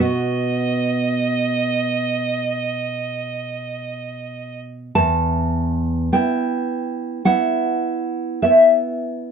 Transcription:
Already playing: B2
0.00 B3 F#4 D#5
4.95 E2 A5
6.12 B3 E4 G5
7.25 B3 E4 F#5
8.42 B3 E4 E5

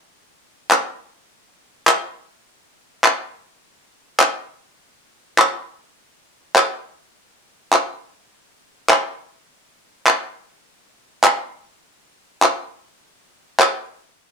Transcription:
0.71 clap
1.87 clap
3.04 clap
4.20 clap
5.38 clap
6.56 clap
7.73 clap
8.89 clap
10.07 clap
11.24 clap
12.42 clap
13.60 clap

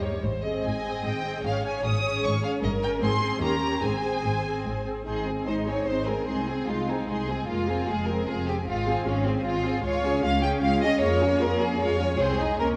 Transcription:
Already playing: G2
0.02 A#3 C#5
0.13 G3
0.23 G#1 G#2 C5
0.43 C4 G#4 D#5
0.64 G#1 G#2 D#5 G#5
0.84 C4 G#4
1.04 G#1 G#2 G5
1.25 C4 G#4
1.45 G#1 G#2 C#4 G#4 C#5 F5
1.64 C#4 G#4 G#5
1.84 G#1 G#2 D#6
2.04 C#4 G#4
2.24 G#1 G#2 C#6
2.43 C#4 G#4 F5
2.63 G1 G2 A#4 D#5
2.82 C#4 A#4 G5
3.02 G#1 G#2 C4 G#4 C6
3.22 C4 G#4
3.42 D#2 C#4 G4 A#4 A#5
3.62 C#4 G4
3.82 G#1 G#2 C4 G#4 C5 G#5
4.03 C4 G#4
4.25 G#1 G#2
4.44 C4 G#4
4.65 G#1 G#2
4.86 C4 G#4
5.06 G#1 G#3 C4 D#4 G#4 C6
5.27 C4 G#4 G#5
5.47 G#1 G#3 D#4 C5 C6
5.67 C4 G#4 C#5 G#5
5.87 G#1 G#3 C4 D#4 C5 C6
6.07 C4 G#4 A#4 G#5
6.27 C2 G#3 D#4 G#4 C6
6.48 C4 G#4 G#5
6.67 C2 G#3 D#4 F4 C6
6.89 C4 D#4 G#4 G#5
7.09 C2 G#3 D#4 G#4 C6
7.29 C4 G#4 G#5
7.48 F1 G#3 A#3 F4 F5
7.68 C4 G#4 G#5
7.88 F1 G#3 F4 G#4 F5
8.07 C4 G#4 A#4 G#5
8.27 F1 G#3 C4 F4 G#4 F5
8.47 C4 G4 G#4 G#5
8.67 G#1 G#3 C4 F4 F5
8.87 C4 G#4 G#5
9.06 G#1 G#3 C#4 F4 F5
9.26 C4 G#4 G#5
9.45 G#1 G#3 F4 F5
9.65 C4 G#4 G#5
9.84 C#2 G#3 F4 C#5 F5
10.04 C#4 G#4 G#5
10.23 C#2 G#3 C#4 F4 F5
10.43 C#4 G#4 G5 G#5
10.62 C#2 G#3 F4 F5
10.82 C#4 G#4 D#5 G#5
11.01 F2 A#3 F4 G#4 C#5 F5
11.22 C#4 F4 G#5
11.41 F2 F4 G#4 A#4 F5
11.61 C#4 F4 G#4 G#5
11.79 F2 G#3 F4 G#4 C#5 F5
12.00 C#4 F4 G#5
12.20 C2 C4 G#4 C5 C6
12.40 D#4 D#5 G#5
12.59 C#2 A#3 C#4 A#4 C#5

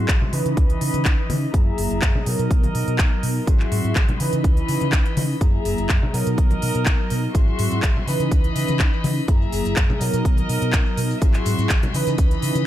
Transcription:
Already playing: F#3 C4 E4 F#4 G#4 E5 C6
0.08 G#1, kick, clap, closed hi-hat
0.21 low conga, maracas
0.32 C#3 E3 C#4 D#4 B4 D#5 B5, open hi-hat, maracas
0.45 C#3, closed hi-hat, maracas
0.57 C#2, kick, closed hi-hat
0.70 closed hi-hat, maracas
0.81 C#3, open hi-hat, maracas
0.94 C#3, closed hi-hat, high conga, maracas
1.05 C#2, kick, clap, closed hi-hat
1.29 C#3, open hi-hat, high conga, maracas
1.43 maracas
1.53 F#2 F#3 A#3 E4 G#4 E5 A#5, kick, closed hi-hat
1.67 maracas
1.78 F#1, open hi-hat, maracas
1.91 F#1, closed hi-hat, maracas
2.02 F#2, kick, clap, closed hi-hat
2.15 low conga, maracas
2.26 B2 F#3 B3 D#4 A#4 D#5, open hi-hat, maracas
2.39 B2, closed hi-hat, maracas
2.50 B1, kick, closed hi-hat, maracas
2.63 closed hi-hat, high conga, maracas
2.75 B2, open hi-hat, maracas
2.87 B2, closed hi-hat, maracas
2.98 B1, kick, clap, closed hi-hat
3.23 B2, open hi-hat, maracas
3.36 maracas
3.47 G#1 F#3 C4 E4 F#4 G#4 E5 C6, kick, closed hi-hat
3.60 clap
3.72 G#2, open hi-hat, maracas
3.84 G#2, closed hi-hat, maracas
3.96 G#1, kick, clap, closed hi-hat
4.08 closed hi-hat, low conga, maracas
4.20 C#3 E3 C#4 D#4 B4 D#5 B5, open hi-hat, maracas
4.33 C#3, closed hi-hat, maracas
4.44 C#2, kick, closed hi-hat, maracas
4.57 closed hi-hat, maracas
4.69 C#3, open hi-hat, maracas
4.81 C#3, closed hi-hat, high conga, maracas
4.92 C#2, kick, clap, closed hi-hat
5.05 closed hi-hat, maracas
5.17 C#3, open hi-hat, high conga, maracas
5.30 maracas
5.41 F#2 F#3 A#3 E4 G#4 E5 A#5, kick, closed hi-hat, maracas
5.54 maracas
5.65 F#1, open hi-hat, maracas
5.78 F#1, closed hi-hat, maracas
5.89 F#2, kick, clap, closed hi-hat
6.02 low conga, maracas
6.13 B2 F#3 B3 D#4 A#4 D#5, open hi-hat, maracas
6.26 B2, closed hi-hat, maracas
6.37 B1, kick, closed hi-hat, maracas
6.51 closed hi-hat, high conga, maracas
6.62 B2, open hi-hat, maracas
6.74 B2, closed hi-hat, maracas
6.86 B1, kick, clap, closed hi-hat
6.99 maracas
7.10 B2, open hi-hat, maracas
7.24 maracas
7.34 G#1 F#3 C4 E4 F#4 G#4 E5 C6, kick, closed hi-hat, maracas
7.47 maracas
7.59 G#2, open hi-hat, maracas
7.71 G#2, closed hi-hat, maracas
7.82 G#1, kick, clap, closed hi-hat, maracas
7.96 low conga, maracas
8.07 C#3 E3 C#4 D#4 B4 D#5 B5, open hi-hat, maracas
8.20 C#3, closed hi-hat, maracas
8.32 C#2, kick, closed hi-hat, maracas
8.44 closed hi-hat, maracas
8.56 C#3, open hi-hat, maracas
8.68 C#3, closed hi-hat, high conga, maracas
8.79 C#2, kick, clap, closed hi-hat, maracas
8.93 maracas
9.04 C#3, open hi-hat, high conga, maracas
9.18 maracas
9.28 F#2 F#3 A#3 E4 G#4 E5 A#5, kick, closed hi-hat, maracas
9.42 maracas
9.52 F#1, open hi-hat, maracas
9.65 F#1, closed hi-hat, maracas
9.76 F#2, kick, clap, closed hi-hat, maracas
9.90 low conga, maracas
10.00 B2 F#3 B3 D#4 A#4 D#5, open hi-hat, maracas
10.13 B2, closed hi-hat, maracas
10.25 B1, kick, closed hi-hat, maracas
10.37 closed hi-hat, high conga, maracas
10.49 B2, open hi-hat, maracas
10.62 B2, closed hi-hat, maracas
10.73 B1, kick, clap, closed hi-hat, maracas
10.86 maracas
10.97 B2, open hi-hat, maracas
11.11 maracas
11.21 G#1 F#3 C4 E4 F#4 G#4 E5 C6, kick, closed hi-hat, maracas
11.34 clap, closed hi-hat, maracas
11.46 G#2, open hi-hat, maracas
11.58 G#2, closed hi-hat, maracas
11.69 G#1, kick, clap, closed hi-hat, maracas
11.83 closed hi-hat, low conga, maracas
11.94 C#3 E3 C#4 D#4 B4 D#5 B5, open hi-hat, maracas
12.07 C#3, closed hi-hat, maracas
12.18 C#2, kick, closed hi-hat, maracas
12.31 closed hi-hat, maracas
12.42 C#3, open hi-hat, maracas
12.55 C#3, closed hi-hat, high conga, maracas

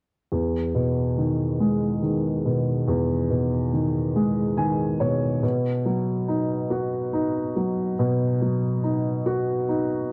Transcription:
0.32 E2
0.75 B2
1.18 D#3
1.60 G#3
2.02 D#3
2.45 B2
2.88 E2
3.30 B2
3.73 D#3
4.16 G#3
4.57 D#3 G#5
5.00 B2 C#5
5.43 B2
5.86 F#3
6.28 D#4
6.70 F#4
7.13 D#4
7.56 F#3
7.99 B2
8.42 F#3
8.83 D#4
9.26 F#4
9.69 D#4

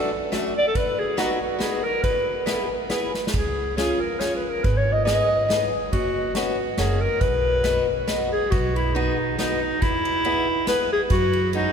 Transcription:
Already playing: A4
0.32 F#2 A3 D4 F#4, snare, ride
0.58 D5
0.67 A4
0.75 B4, kick, ride
0.98 G#4
1.17 B3 D#4 F#4, snare, ride
1.42 F#4
1.59 B3 D#4 F#4 G#4, snare, ride
1.83 A#4
2.03 B4, kick, ride
2.46 B3 E4 G#4, snare, ride
2.89 B3 E4 G#4, snare, ride
3.14 snare
3.27 snare
3.33 C#2 G#4, kick, ride
3.77 C#4 F4 G#4, snare, ride
4.00 A#4
4.19 C#4 F4 G#4 C#5, snare, ride
4.36 B4
4.50 A#4
4.63 G#1 B4, kick, ride
4.77 C#5
4.92 D#5
5.05 B3 D#4 G#4 D#5, snare, ride
5.49 B3 D#4 G#4, snare, ride
5.92 F#1 F#4, kick, ride
6.35 B3 C#4 F#4, snare, ride
6.77 F#1 A#3 C#4 F#4 G#4, snare, ride
7.00 A#4
7.20 B1 B4, kick, ride
7.64 B3 D#4 F#4, snare, ride
8.07 B3 D#4 F#4, snare, ride
8.32 G#4
8.51 B1 F#4, kick, ride
8.75 E4, ride
8.94 B3 D#4 F#4, ride
9.38 B3 D#4 F#4, snare, ride
9.60 D#4
9.82 E2 E4, kick, ride
10.05 ride
10.25 B3 E4 G#4, ride
10.67 B3 E4 G#4 B4, snare, ride
10.92 G#4
11.10 F#2 F#4, kick, ride
11.33 ride
11.53 G#3 C#4 D#4 F#4, ride

